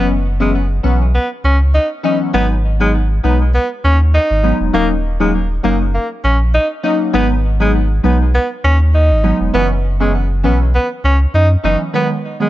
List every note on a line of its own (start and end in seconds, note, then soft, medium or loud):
0.00 0.80 F#1 loud
0.00 0.14 E3 medium
0.00 0.14 F#3 medium
0.00 0.14 B3 medium
0.00 0.14 C#4 loud
0.40 0.58 E3 medium
0.40 0.58 F#3 medium
0.40 0.52 G#3 medium
0.40 0.58 B3 medium
0.40 0.58 C#4 medium
0.83 1.18 B1 loud
0.83 1.04 E3 medium
0.83 1.04 F#3 medium
0.83 1.04 B3 medium
0.83 0.98 B3 medium
0.83 1.04 C#4 medium
1.14 1.28 B3 medium
1.44 1.78 C#2 loud
1.44 1.58 C#4 medium
1.74 1.88 D#4 medium
2.03 2.31 E3 medium
2.03 2.31 F#3 medium
2.03 2.31 B3 medium
2.03 2.32 C#4 medium
2.03 2.18 D#4 medium
2.33 3.20 G#1 loud
2.33 2.54 F#3 medium
2.33 2.54 G#3 medium
2.33 2.54 B3 medium
2.33 2.48 B3 loud
2.33 2.54 D#4 loud
2.80 2.98 F#3 medium
2.80 2.98 G#3 medium
2.80 2.92 G#3 medium
2.80 2.98 B3 medium
2.80 2.98 D#4 medium
3.23 3.58 B1 medium
3.23 3.44 F#3 medium
3.23 3.44 G#3 medium
3.23 3.44 B3 medium
3.23 3.38 B3 medium
3.23 3.44 D#4 medium
3.54 3.68 B3 medium
3.84 4.18 D#2 medium
3.84 3.98 C#4 medium
4.14 4.58 D#4 medium
4.30 4.52 G#1 loud
4.43 4.71 F#3 medium
4.43 4.71 G#3 medium
4.43 4.71 B3 medium
4.43 4.72 D#4 medium
4.60 4.70 E1 medium
4.73 5.60 D#1 loud
4.73 4.94 F#3 medium
4.73 4.94 A#3 medium
4.73 4.88 A#3 loud
4.73 4.94 C#4 medium
4.73 4.94 D#4 loud
5.20 5.38 F#3 medium
5.20 5.32 G#3 medium
5.20 5.38 A#3 medium
5.20 5.38 C#4 medium
5.20 5.38 D#4 medium
5.63 5.98 F#1 medium
5.63 5.84 F#3 medium
5.63 5.84 A#3 medium
5.63 5.78 A#3 medium
5.63 5.84 C#4 medium
5.63 5.84 D#4 medium
5.94 6.08 A#3 medium
6.24 6.58 A#1 loud
6.24 6.38 C#4 medium
6.54 6.68 D#4 medium
6.83 7.11 F#3 medium
6.83 7.11 A#3 medium
6.83 7.11 C#4 medium
6.83 7.12 D#4 medium
6.83 6.98 D#4 medium
7.13 8.00 G#1 loud
7.13 7.34 F#3 loud
7.13 7.34 G#3 medium
7.13 7.34 B3 medium
7.13 7.28 B3 loud
7.13 7.34 D#4 loud
7.60 7.78 F#3 medium
7.60 7.78 G#3 medium
7.60 7.72 G#3 medium
7.60 7.78 B3 medium
7.60 7.78 D#4 medium
8.03 8.38 B1 medium
8.03 8.24 F#3 medium
8.03 8.24 G#3 medium
8.03 8.24 B3 medium
8.03 8.18 B3 medium
8.03 8.24 D#4 medium
8.34 8.48 B3 medium
8.64 9.12 D#2 loud
8.64 8.78 C#4 medium
8.94 9.38 D#4 medium
9.10 9.33 G#1 medium
9.23 9.51 F#3 medium
9.23 9.51 G#3 medium
9.23 9.52 B3 medium
9.23 9.52 D#4 medium
9.40 9.50 E1 medium
9.53 10.45 F#1 loud
9.53 9.74 E3 medium
9.53 9.74 F#3 medium
9.53 9.74 B3 medium
9.53 9.68 B3 loud
9.53 9.74 C#4 loud
10.00 10.18 E3 medium
10.00 10.18 F#3 medium
10.00 10.12 G#3 medium
10.00 10.18 B3 medium
10.00 10.18 C#4 medium
10.43 10.78 B1 medium
10.43 10.64 E3 medium
10.43 10.64 F#3 medium
10.43 10.64 B3 medium
10.43 10.58 B3 medium
10.43 10.64 C#4 medium
10.74 10.88 B3 medium
11.04 11.26 C#2 loud
11.04 11.18 C#4 medium
11.34 11.56 F#2 loud
11.34 11.48 D#4 medium
11.63 11.76 F#1 medium
11.63 11.84 E3 medium
11.63 11.84 F#3 medium
11.63 11.84 B3 medium
11.63 11.84 C#4 medium
11.63 11.78 D#4 medium
11.93 12.14 D#3 medium
11.93 12.14 F#3 medium
11.93 12.14 G#3 medium
11.93 12.14 B3 loud
11.93 12.08 B3 medium
12.40 12.49 D#3 medium
12.40 12.49 F#3 medium
12.40 12.49 G#3 medium
12.40 12.49 B3 medium